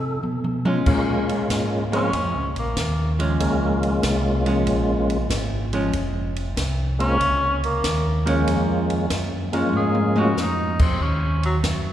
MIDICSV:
0, 0, Header, 1, 6, 480
1, 0, Start_track
1, 0, Key_signature, -5, "minor"
1, 0, Tempo, 633580
1, 658, Time_signature, 4, 2, 24, 8
1, 9037, End_track
2, 0, Start_track
2, 0, Title_t, "Tenor saxophone"
2, 0, Program_c, 0, 66
2, 1480, Note_on_c, 0, 61, 86
2, 1920, Note_off_c, 0, 61, 0
2, 1960, Note_on_c, 0, 58, 73
2, 2400, Note_off_c, 0, 58, 0
2, 5307, Note_on_c, 0, 61, 106
2, 5753, Note_off_c, 0, 61, 0
2, 5799, Note_on_c, 0, 58, 83
2, 6239, Note_off_c, 0, 58, 0
2, 7398, Note_on_c, 0, 68, 71
2, 7690, Note_off_c, 0, 68, 0
2, 7720, Note_on_c, 0, 66, 88
2, 7881, Note_on_c, 0, 63, 81
2, 7892, Note_off_c, 0, 66, 0
2, 8189, Note_off_c, 0, 63, 0
2, 8194, Note_on_c, 0, 60, 83
2, 8353, Note_on_c, 0, 61, 95
2, 8365, Note_off_c, 0, 60, 0
2, 8670, Note_off_c, 0, 61, 0
2, 8676, Note_on_c, 0, 54, 79
2, 8765, Note_off_c, 0, 54, 0
2, 9037, End_track
3, 0, Start_track
3, 0, Title_t, "Tonewheel organ"
3, 0, Program_c, 1, 16
3, 0, Note_on_c, 1, 69, 93
3, 158, Note_off_c, 1, 69, 0
3, 655, Note_on_c, 1, 58, 51
3, 658, Note_on_c, 1, 56, 58
3, 660, Note_on_c, 1, 61, 54
3, 661, Note_on_c, 1, 65, 62
3, 1395, Note_off_c, 1, 58, 0
3, 1396, Note_off_c, 1, 56, 0
3, 1397, Note_off_c, 1, 61, 0
3, 1398, Note_off_c, 1, 65, 0
3, 1455, Note_on_c, 1, 56, 69
3, 1460, Note_on_c, 1, 60, 66
3, 1461, Note_on_c, 1, 58, 69
3, 1464, Note_on_c, 1, 65, 81
3, 1465, Note_on_c, 1, 61, 70
3, 1598, Note_off_c, 1, 56, 0
3, 1601, Note_off_c, 1, 58, 0
3, 1601, Note_off_c, 1, 60, 0
3, 1603, Note_off_c, 1, 61, 0
3, 1603, Note_off_c, 1, 65, 0
3, 2575, Note_on_c, 1, 58, 53
3, 2578, Note_on_c, 1, 56, 60
3, 2579, Note_on_c, 1, 61, 57
3, 2582, Note_on_c, 1, 65, 71
3, 3921, Note_off_c, 1, 58, 0
3, 3923, Note_off_c, 1, 56, 0
3, 3923, Note_off_c, 1, 61, 0
3, 3925, Note_off_c, 1, 65, 0
3, 5294, Note_on_c, 1, 56, 68
3, 5295, Note_on_c, 1, 60, 63
3, 5297, Note_on_c, 1, 58, 60
3, 5300, Note_on_c, 1, 61, 59
3, 5301, Note_on_c, 1, 65, 66
3, 5437, Note_off_c, 1, 56, 0
3, 5438, Note_off_c, 1, 60, 0
3, 5439, Note_off_c, 1, 58, 0
3, 5440, Note_off_c, 1, 61, 0
3, 5440, Note_off_c, 1, 65, 0
3, 6252, Note_on_c, 1, 56, 66
3, 6254, Note_on_c, 1, 58, 53
3, 6257, Note_on_c, 1, 65, 66
3, 6258, Note_on_c, 1, 61, 56
3, 6861, Note_off_c, 1, 56, 0
3, 6862, Note_off_c, 1, 58, 0
3, 6863, Note_off_c, 1, 65, 0
3, 6864, Note_off_c, 1, 61, 0
3, 7217, Note_on_c, 1, 56, 61
3, 7219, Note_on_c, 1, 58, 62
3, 7223, Note_on_c, 1, 61, 63
3, 7224, Note_on_c, 1, 65, 80
3, 7824, Note_off_c, 1, 56, 0
3, 7825, Note_off_c, 1, 58, 0
3, 7827, Note_off_c, 1, 61, 0
3, 7827, Note_off_c, 1, 65, 0
3, 9037, End_track
4, 0, Start_track
4, 0, Title_t, "Hollow-body jazz guitar"
4, 0, Program_c, 2, 26
4, 495, Note_on_c, 2, 56, 54
4, 503, Note_on_c, 2, 61, 58
4, 506, Note_on_c, 2, 65, 59
4, 1103, Note_off_c, 2, 56, 0
4, 1107, Note_off_c, 2, 61, 0
4, 1108, Note_off_c, 2, 65, 0
4, 1456, Note_on_c, 2, 53, 55
4, 1461, Note_on_c, 2, 56, 62
4, 1467, Note_on_c, 2, 61, 61
4, 1599, Note_off_c, 2, 53, 0
4, 1601, Note_off_c, 2, 56, 0
4, 1604, Note_off_c, 2, 61, 0
4, 2417, Note_on_c, 2, 53, 57
4, 2421, Note_on_c, 2, 56, 57
4, 2428, Note_on_c, 2, 61, 69
4, 3023, Note_off_c, 2, 53, 0
4, 3025, Note_off_c, 2, 56, 0
4, 3028, Note_off_c, 2, 61, 0
4, 3378, Note_on_c, 2, 53, 60
4, 3385, Note_on_c, 2, 56, 59
4, 3390, Note_on_c, 2, 61, 60
4, 3983, Note_off_c, 2, 53, 0
4, 3987, Note_off_c, 2, 56, 0
4, 3989, Note_off_c, 2, 61, 0
4, 4342, Note_on_c, 2, 53, 68
4, 4346, Note_on_c, 2, 56, 65
4, 4350, Note_on_c, 2, 61, 68
4, 4481, Note_off_c, 2, 53, 0
4, 4483, Note_off_c, 2, 56, 0
4, 4485, Note_off_c, 2, 61, 0
4, 6259, Note_on_c, 2, 53, 58
4, 6266, Note_on_c, 2, 56, 63
4, 6269, Note_on_c, 2, 61, 73
4, 6865, Note_off_c, 2, 53, 0
4, 6868, Note_off_c, 2, 56, 0
4, 6869, Note_off_c, 2, 61, 0
4, 7222, Note_on_c, 2, 53, 50
4, 7226, Note_on_c, 2, 56, 54
4, 7233, Note_on_c, 2, 61, 51
4, 7669, Note_off_c, 2, 53, 0
4, 7671, Note_off_c, 2, 56, 0
4, 7675, Note_off_c, 2, 61, 0
4, 7700, Note_on_c, 2, 53, 59
4, 7704, Note_on_c, 2, 56, 59
4, 7710, Note_on_c, 2, 61, 66
4, 7841, Note_off_c, 2, 53, 0
4, 7843, Note_off_c, 2, 56, 0
4, 7846, Note_off_c, 2, 61, 0
4, 9037, End_track
5, 0, Start_track
5, 0, Title_t, "Tonewheel organ"
5, 0, Program_c, 3, 16
5, 0, Note_on_c, 3, 48, 76
5, 146, Note_off_c, 3, 48, 0
5, 172, Note_on_c, 3, 47, 63
5, 625, Note_off_c, 3, 47, 0
5, 653, Note_on_c, 3, 46, 79
5, 1121, Note_off_c, 3, 46, 0
5, 1135, Note_on_c, 3, 44, 73
5, 1601, Note_off_c, 3, 44, 0
5, 1615, Note_on_c, 3, 41, 69
5, 1771, Note_off_c, 3, 41, 0
5, 1779, Note_on_c, 3, 37, 54
5, 1936, Note_on_c, 3, 34, 58
5, 1938, Note_off_c, 3, 37, 0
5, 2085, Note_off_c, 3, 34, 0
5, 2096, Note_on_c, 3, 39, 79
5, 2562, Note_off_c, 3, 39, 0
5, 2575, Note_on_c, 3, 37, 74
5, 3041, Note_off_c, 3, 37, 0
5, 3054, Note_on_c, 3, 36, 88
5, 3520, Note_off_c, 3, 36, 0
5, 3535, Note_on_c, 3, 34, 78
5, 4001, Note_off_c, 3, 34, 0
5, 4012, Note_on_c, 3, 32, 81
5, 4479, Note_off_c, 3, 32, 0
5, 4496, Note_on_c, 3, 29, 87
5, 4961, Note_off_c, 3, 29, 0
5, 4974, Note_on_c, 3, 36, 83
5, 5440, Note_off_c, 3, 36, 0
5, 5455, Note_on_c, 3, 37, 77
5, 5921, Note_off_c, 3, 37, 0
5, 5935, Note_on_c, 3, 39, 82
5, 6401, Note_off_c, 3, 39, 0
5, 6415, Note_on_c, 3, 41, 83
5, 6881, Note_off_c, 3, 41, 0
5, 6896, Note_on_c, 3, 42, 83
5, 7362, Note_off_c, 3, 42, 0
5, 7377, Note_on_c, 3, 44, 81
5, 7843, Note_off_c, 3, 44, 0
5, 7857, Note_on_c, 3, 41, 80
5, 8323, Note_off_c, 3, 41, 0
5, 8336, Note_on_c, 3, 39, 76
5, 8803, Note_off_c, 3, 39, 0
5, 8814, Note_on_c, 3, 42, 86
5, 9037, Note_off_c, 3, 42, 0
5, 9037, End_track
6, 0, Start_track
6, 0, Title_t, "Drums"
6, 175, Note_on_c, 9, 47, 42
6, 251, Note_off_c, 9, 47, 0
6, 335, Note_on_c, 9, 47, 52
6, 411, Note_off_c, 9, 47, 0
6, 494, Note_on_c, 9, 47, 78
6, 570, Note_off_c, 9, 47, 0
6, 653, Note_on_c, 9, 49, 67
6, 655, Note_on_c, 9, 36, 61
6, 729, Note_off_c, 9, 49, 0
6, 731, Note_off_c, 9, 36, 0
6, 980, Note_on_c, 9, 51, 42
6, 1056, Note_off_c, 9, 51, 0
6, 1136, Note_on_c, 9, 36, 17
6, 1137, Note_on_c, 9, 38, 63
6, 1137, Note_on_c, 9, 44, 50
6, 1137, Note_on_c, 9, 51, 61
6, 1212, Note_off_c, 9, 36, 0
6, 1212, Note_off_c, 9, 38, 0
6, 1213, Note_off_c, 9, 44, 0
6, 1213, Note_off_c, 9, 51, 0
6, 1464, Note_on_c, 9, 51, 41
6, 1539, Note_off_c, 9, 51, 0
6, 1615, Note_on_c, 9, 51, 54
6, 1617, Note_on_c, 9, 36, 19
6, 1691, Note_off_c, 9, 51, 0
6, 1692, Note_off_c, 9, 36, 0
6, 1940, Note_on_c, 9, 51, 41
6, 2015, Note_off_c, 9, 51, 0
6, 2096, Note_on_c, 9, 36, 24
6, 2096, Note_on_c, 9, 38, 62
6, 2096, Note_on_c, 9, 44, 50
6, 2096, Note_on_c, 9, 51, 64
6, 2171, Note_off_c, 9, 38, 0
6, 2172, Note_off_c, 9, 36, 0
6, 2172, Note_off_c, 9, 44, 0
6, 2172, Note_off_c, 9, 51, 0
6, 2422, Note_on_c, 9, 51, 46
6, 2498, Note_off_c, 9, 51, 0
6, 2577, Note_on_c, 9, 36, 20
6, 2578, Note_on_c, 9, 51, 61
6, 2653, Note_off_c, 9, 36, 0
6, 2654, Note_off_c, 9, 51, 0
6, 2901, Note_on_c, 9, 51, 45
6, 2977, Note_off_c, 9, 51, 0
6, 3054, Note_on_c, 9, 38, 65
6, 3054, Note_on_c, 9, 44, 52
6, 3054, Note_on_c, 9, 51, 67
6, 3055, Note_on_c, 9, 36, 23
6, 3129, Note_off_c, 9, 38, 0
6, 3130, Note_off_c, 9, 44, 0
6, 3130, Note_off_c, 9, 51, 0
6, 3131, Note_off_c, 9, 36, 0
6, 3379, Note_on_c, 9, 51, 42
6, 3455, Note_off_c, 9, 51, 0
6, 3535, Note_on_c, 9, 36, 16
6, 3536, Note_on_c, 9, 51, 54
6, 3611, Note_off_c, 9, 36, 0
6, 3611, Note_off_c, 9, 51, 0
6, 3862, Note_on_c, 9, 51, 41
6, 3938, Note_off_c, 9, 51, 0
6, 4015, Note_on_c, 9, 36, 21
6, 4017, Note_on_c, 9, 38, 66
6, 4018, Note_on_c, 9, 44, 66
6, 4018, Note_on_c, 9, 51, 64
6, 4091, Note_off_c, 9, 36, 0
6, 4093, Note_off_c, 9, 38, 0
6, 4094, Note_off_c, 9, 44, 0
6, 4094, Note_off_c, 9, 51, 0
6, 4339, Note_on_c, 9, 51, 43
6, 4415, Note_off_c, 9, 51, 0
6, 4495, Note_on_c, 9, 36, 22
6, 4495, Note_on_c, 9, 51, 51
6, 4571, Note_off_c, 9, 36, 0
6, 4571, Note_off_c, 9, 51, 0
6, 4821, Note_on_c, 9, 51, 43
6, 4897, Note_off_c, 9, 51, 0
6, 4976, Note_on_c, 9, 36, 23
6, 4978, Note_on_c, 9, 38, 62
6, 4979, Note_on_c, 9, 44, 57
6, 4979, Note_on_c, 9, 51, 70
6, 5052, Note_off_c, 9, 36, 0
6, 5054, Note_off_c, 9, 38, 0
6, 5055, Note_off_c, 9, 44, 0
6, 5055, Note_off_c, 9, 51, 0
6, 5305, Note_on_c, 9, 51, 40
6, 5380, Note_off_c, 9, 51, 0
6, 5457, Note_on_c, 9, 36, 22
6, 5459, Note_on_c, 9, 51, 51
6, 5532, Note_off_c, 9, 36, 0
6, 5535, Note_off_c, 9, 51, 0
6, 5785, Note_on_c, 9, 51, 41
6, 5860, Note_off_c, 9, 51, 0
6, 5937, Note_on_c, 9, 36, 19
6, 5939, Note_on_c, 9, 38, 67
6, 5940, Note_on_c, 9, 44, 67
6, 5940, Note_on_c, 9, 51, 61
6, 6013, Note_off_c, 9, 36, 0
6, 6015, Note_off_c, 9, 38, 0
6, 6015, Note_off_c, 9, 44, 0
6, 6015, Note_off_c, 9, 51, 0
6, 6264, Note_on_c, 9, 51, 48
6, 6340, Note_off_c, 9, 51, 0
6, 6418, Note_on_c, 9, 36, 18
6, 6421, Note_on_c, 9, 51, 56
6, 6494, Note_off_c, 9, 36, 0
6, 6496, Note_off_c, 9, 51, 0
6, 6742, Note_on_c, 9, 51, 43
6, 6818, Note_off_c, 9, 51, 0
6, 6895, Note_on_c, 9, 38, 62
6, 6896, Note_on_c, 9, 36, 20
6, 6896, Note_on_c, 9, 44, 57
6, 6896, Note_on_c, 9, 51, 65
6, 6971, Note_off_c, 9, 38, 0
6, 6972, Note_off_c, 9, 36, 0
6, 6972, Note_off_c, 9, 44, 0
6, 6972, Note_off_c, 9, 51, 0
6, 7220, Note_on_c, 9, 51, 43
6, 7296, Note_off_c, 9, 51, 0
6, 7372, Note_on_c, 9, 48, 41
6, 7448, Note_off_c, 9, 48, 0
6, 7535, Note_on_c, 9, 48, 55
6, 7610, Note_off_c, 9, 48, 0
6, 7694, Note_on_c, 9, 48, 71
6, 7770, Note_off_c, 9, 48, 0
6, 7857, Note_on_c, 9, 38, 50
6, 7858, Note_on_c, 9, 44, 57
6, 7933, Note_off_c, 9, 38, 0
6, 7934, Note_off_c, 9, 44, 0
6, 8178, Note_on_c, 9, 49, 72
6, 8180, Note_on_c, 9, 36, 75
6, 8254, Note_off_c, 9, 49, 0
6, 8255, Note_off_c, 9, 36, 0
6, 8335, Note_on_c, 9, 36, 23
6, 8411, Note_off_c, 9, 36, 0
6, 8661, Note_on_c, 9, 51, 43
6, 8737, Note_off_c, 9, 51, 0
6, 8816, Note_on_c, 9, 38, 65
6, 8816, Note_on_c, 9, 44, 60
6, 8816, Note_on_c, 9, 51, 67
6, 8817, Note_on_c, 9, 36, 18
6, 8891, Note_off_c, 9, 38, 0
6, 8892, Note_off_c, 9, 36, 0
6, 8892, Note_off_c, 9, 44, 0
6, 8892, Note_off_c, 9, 51, 0
6, 9037, End_track
0, 0, End_of_file